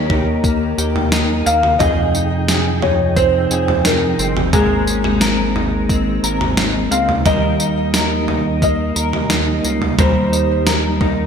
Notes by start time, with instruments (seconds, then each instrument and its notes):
Already playing: analog synth bass D#2, clean electric guitar A#3 G4, tonewheel organ A#3 D#4 A#4, felt piano C#5
0.10 clean electric guitar D#4, kick, floor tom
0.44 clean electric guitar A#3, kick, tambourine
0.78 analog synth bass D#2, clean electric guitar G4, tambourine
0.96 floor tom
1.12 clean electric guitar D#4, snare, tambourine
1.46 analog synth bass D#2, clean electric guitar A#3, felt piano F5, tambourine
1.63 floor tom
1.79 analog synth bass F2, tonewheel organ C3 F3 G#4 G5, clean electric guitar G#4, felt piano D#5, kick, floor tom, tambourine
2.15 clean electric guitar D#4, tambourine
2.48 clean electric guitar G#4, snare, tambourine
2.82 clean electric guitar D#4, felt piano C#5, floor tom
3.17 clean electric guitar C4, felt piano C5, kick, tambourine
3.51 analog synth bass F2, clean electric guitar G#4, tambourine
3.68 floor tom
3.85 clean electric guitar D#4, felt piano A#4, snare, tambourine
4.18 analog synth bass G1, clean electric guitar C4, tambourine
4.37 floor tom
4.53 analog synth bass G#1, clean electric guitar G#3 A#4, tonewheel organ G#3 A#3 C4, felt piano G#4, kick, floor tom, tambourine
4.87 clean electric guitar C#4, tambourine
5.04 clean electric guitar D#4, floor tom
5.21 clean electric guitar A#4, snare, tambourine
5.56 clean electric guitar D#4, floor tom
5.89 clean electric guitar C4, kick, tambourine
6.23 analog synth bass G#1, clean electric guitar A#4, tambourine
6.41 floor tom
6.57 clean electric guitar D#4, snare, tambourine
6.91 analog synth bass C#2, clean electric guitar C4, felt piano F5, tambourine
7.09 floor tom
7.25 analog synth bass D#2, tonewheel organ G3 A#3 D#4, clean electric guitar G3 A#4, felt piano D#5, kick, floor tom, tambourine
7.60 clean electric guitar D#4, tambourine
7.94 clean electric guitar A#4, snare, tambourine
8.28 clean electric guitar D#4, floor tom
8.62 clean electric guitar A#3, felt piano D#5, kick, tambourine
8.96 analog synth bass D#2, clean electric guitar A#4, tambourine
9.13 floor tom
9.30 clean electric guitar D#4, snare, tambourine
9.64 analog synth bass C#2, clean electric guitar A#3, tambourine
9.82 floor tom
9.98 analog synth bass D#2, clean electric guitar G3 A#4, felt piano C5, kick, floor tom, tambourine
10.32 clean electric guitar D#4, tambourine
10.67 clean electric guitar A#4, felt piano A#4, snare, tambourine
11.01 clean electric guitar D#4, kick, floor tom